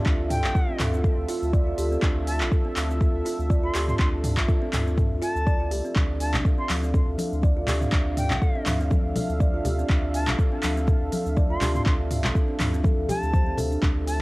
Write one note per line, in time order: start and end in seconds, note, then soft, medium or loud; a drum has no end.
0.00 5.92 F4 medium
0.00 5.92 A4 medium
0.00 5.92 E5 medium
0.05 0.45 D2 loud
0.05 0.18 D4 medium
0.05 kick loud
0.05 clap medium
0.05 cabasa soft
0.30 0.80 G5 loud
0.30 mid tom medium
0.30 open hi-hat medium
0.30 cabasa medium
0.44 0.52 A1 loud
0.44 clap loud
0.44 cabasa medium
0.55 0.62 A4 medium
0.55 kick loud
0.55 cabasa soft
0.69 0.79 C4 medium
0.79 1.12 D2 medium
0.79 clap medium
0.79 mid tom loud
0.79 open hi-hat medium
0.79 cabasa medium
0.93 1.04 C4 medium
0.93 cabasa medium
1.04 1.17 A4 medium
1.04 kick loud
1.04 cabasa soft
1.18 1.26 D2 loud
1.29 1.41 F4 loud
1.29 open hi-hat medium
1.29 cabasa medium
1.42 1.74 D2 medium
1.42 cabasa soft
1.53 1.66 D5 loud
1.53 kick loud
1.53 cabasa soft
1.67 1.77 F4 medium
1.78 1.97 D2 loud
1.78 1.90 G4 medium
1.78 open hi-hat medium
1.78 cabasa medium
1.91 2.01 C4 medium
1.91 cabasa medium
2.02 2.42 D2 loud
2.02 2.15 D4 medium
2.02 kick loud
2.02 clap medium
2.02 cabasa soft
2.27 2.41 A5 loud
2.27 open hi-hat medium
2.27 cabasa medium
2.41 2.49 A1 loud
2.41 clap medium
2.41 cabasa medium
2.52 2.59 A4 medium
2.52 kick loud
2.52 cabasa soft
2.65 2.76 C4 medium
2.76 3.09 D2 medium
2.76 clap medium
2.76 open hi-hat loud
2.76 cabasa medium
2.90 3.00 C4 medium
2.90 cabasa medium
3.01 3.14 A4 medium
3.01 kick loud
3.01 cabasa soft
3.14 3.23 D2 loud
3.25 3.38 F4 loud
3.25 open hi-hat medium
3.25 cabasa medium
3.39 3.70 D2 medium
3.39 cabasa medium
3.50 3.63 D5 loud
3.50 kick loud
3.50 cabasa soft
3.63 3.74 F4 medium
3.63 3.86 C6 medium
3.74 3.94 D2 loud
3.74 3.87 G4 medium
3.74 clap medium
3.74 open hi-hat medium
3.74 cabasa medium
3.88 3.98 C4 medium
3.88 3.95 C6 medium
3.88 mid tom medium
3.88 cabasa medium
3.99 4.39 D2 loud
3.99 4.12 D4 medium
3.99 4.08 C6 medium
3.99 kick loud
3.99 clap medium
3.99 cabasa soft
4.24 mid tom medium
4.24 open hi-hat loud
4.24 cabasa medium
4.37 4.46 A1 loud
4.37 kick medium
4.37 clap loud
4.37 cabasa medium
4.48 4.56 A4 medium
4.48 kick loud
4.48 cabasa soft
4.62 4.72 C4 medium
4.73 5.06 D2 medium
4.73 clap medium
4.73 mid tom loud
4.73 open hi-hat loud
4.73 cabasa medium
4.86 4.97 C4 medium
4.86 cabasa medium
4.97 5.10 A4 medium
4.97 kick loud
4.97 mid tom medium
4.97 cabasa soft
5.11 5.19 D2 loud
5.22 5.34 F4 loud
5.22 5.71 A5 loud
5.22 open hi-hat medium
5.22 cabasa medium
5.35 5.73 D2 medium
5.35 cabasa soft
5.47 5.60 D5 loud
5.47 kick loud
5.47 cabasa soft
5.60 5.71 F4 medium
5.71 5.81 C2 medium
5.71 5.84 G4 medium
5.71 open hi-hat medium
5.71 cabasa medium
5.85 5.95 C4 medium
5.85 cabasa medium
5.95 6.36 D2 loud
5.95 13.79 D4 medium
5.95 6.09 D4 medium
5.95 14.22 A4 medium
5.95 13.79 E5 medium
5.95 13.79 F5 loud
5.95 kick loud
5.95 clap medium
5.95 low conga medium
5.95 cabasa soft
6.20 6.34 A5 medium
6.20 open hi-hat loud
6.20 cabasa medium
6.34 6.42 A1 loud
6.34 clap loud
6.34 low conga loud
6.34 cabasa medium
6.45 6.52 A4 medium
6.45 kick loud
6.45 cabasa soft
6.58 6.69 C4 medium
6.58 6.70 C6 loud
6.70 7.02 D2 medium
6.70 clap medium
6.70 open hi-hat loud
6.70 high conga medium
6.70 cabasa medium
6.83 6.94 C4 medium
6.83 cabasa medium
6.94 7.07 A4 medium
6.94 kick loud
6.94 low conga medium
6.94 cabasa soft
7.08 7.16 D2 loud
7.18 7.32 A4 medium
7.18 open hi-hat loud
7.18 high conga medium
7.18 cabasa medium
7.32 7.64 D2 medium
7.32 cabasa medium
7.42 7.56 D5 loud
7.42 kick loud
7.42 high conga medium
7.42 cabasa soft
7.57 7.67 F4 medium
7.67 7.87 D2 loud
7.67 7.80 G4 medium
7.67 clap medium
7.67 open hi-hat medium
7.67 low conga loud
7.67 cabasa medium
7.81 7.92 C4 medium
7.81 mid tom medium
7.81 cabasa medium
7.92 8.32 D2 loud
7.92 kick loud
7.92 clap loud
7.92 low conga loud
7.92 cabasa soft
8.17 8.66 G5 loud
8.17 mid tom medium
8.17 open hi-hat medium
8.17 cabasa medium
8.30 8.39 A1 loud
8.30 clap loud
8.30 low conga loud
8.30 cabasa medium
8.42 8.49 A4 medium
8.42 kick loud
8.42 cabasa soft
8.55 8.66 C4 medium
8.66 8.99 D2 medium
8.66 clap medium
8.66 mid tom medium
8.66 open hi-hat medium
8.66 high conga medium
8.66 cabasa loud
8.80 8.91 C4 medium
8.80 cabasa medium
8.90 9.04 A4 medium
8.90 kick loud
8.90 high conga loud
8.90 cabasa soft
9.05 9.13 D2 loud
9.15 9.28 A4 medium
9.15 open hi-hat medium
9.15 high conga loud
9.15 low conga loud
9.15 cabasa loud
9.29 9.60 D2 medium
9.29 cabasa medium
9.40 9.53 D5 loud
9.40 kick loud
9.40 high conga medium
9.40 cabasa soft
9.54 9.64 F4 medium
9.65 9.84 D2 loud
9.65 9.77 G4 medium
9.65 open hi-hat medium
9.65 low conga medium
9.65 cabasa loud
9.78 9.88 C4 medium
9.78 cabasa medium
9.89 10.29 D2 loud
9.89 10.02 D4 medium
9.89 kick loud
9.89 clap medium
9.89 low conga medium
9.89 cabasa soft
10.14 10.28 A5 loud
10.14 open hi-hat medium
10.14 cabasa loud
10.27 10.36 A1 loud
10.27 clap loud
10.27 low conga medium
10.27 cabasa medium
10.38 10.46 A4 medium
10.38 kick loud
10.38 cabasa soft
10.52 10.63 C4 medium
10.63 10.96 D2 medium
10.63 clap medium
10.63 open hi-hat medium
10.63 high conga medium
10.63 cabasa loud
10.76 10.87 C4 medium
10.76 cabasa medium
10.87 11.01 A4 medium
10.87 kick loud
10.87 low conga loud
10.87 cabasa soft
11.02 11.10 D2 loud
11.12 11.25 A4 medium
11.12 open hi-hat medium
11.12 high conga medium
11.12 cabasa loud
11.26 11.57 D2 medium
11.26 cabasa medium
11.37 11.50 D5 loud
11.37 kick loud
11.37 high conga medium
11.37 cabasa soft
11.50 11.61 F4 medium
11.50 11.72 C6 medium
11.61 11.81 D2 loud
11.61 11.74 G4 medium
11.61 clap medium
11.61 open hi-hat medium
11.61 low conga loud
11.61 cabasa loud
11.75 11.85 C4 medium
11.75 11.82 C6 medium
11.75 mid tom medium
11.75 cabasa medium
11.86 12.26 D2 medium
11.86 11.99 D4 medium
11.86 11.95 C6 medium
11.86 kick loud
11.86 clap medium
11.86 low conga medium
11.86 cabasa soft
12.11 mid tom medium
12.11 open hi-hat medium
12.11 cabasa loud
12.24 12.33 A1 loud
12.24 clap loud
12.24 low conga loud
12.24 cabasa medium
12.35 12.42 A4 medium
12.35 kick loud
12.35 cabasa soft
12.48 12.59 C4 medium
12.59 12.93 D2 medium
12.59 clap medium
12.59 mid tom medium
12.59 open hi-hat medium
12.59 high conga medium
12.59 cabasa loud
12.73 12.84 C4 medium
12.73 cabasa medium
12.84 12.97 A4 medium
12.84 kick loud
12.84 high conga loud
12.84 cabasa soft
12.98 13.06 D2 loud
13.09 13.22 G4 loud
13.09 13.58 A5 loud
13.09 open hi-hat medium
13.09 high conga medium
13.09 low conga medium
13.09 cabasa loud
13.23 13.54 D2 medium
13.23 cabasa medium
13.33 13.46 C5 medium
13.33 kick loud
13.33 high conga medium
13.33 cabasa soft
13.47 13.57 C4 medium
13.58 13.77 D2 loud
13.58 13.65 A4 loud
13.58 open hi-hat medium
13.58 low conga loud
13.58 cabasa loud
13.71 13.81 D4 medium
13.71 cabasa medium
13.82 14.22 D2 loud
13.82 13.96 D4 medium
13.82 14.22 F4 medium
13.82 14.22 E5 medium
13.82 kick loud
13.82 clap medium
13.82 low conga medium
13.82 cabasa soft
14.07 14.21 A5 medium
14.07 open hi-hat medium
14.07 cabasa loud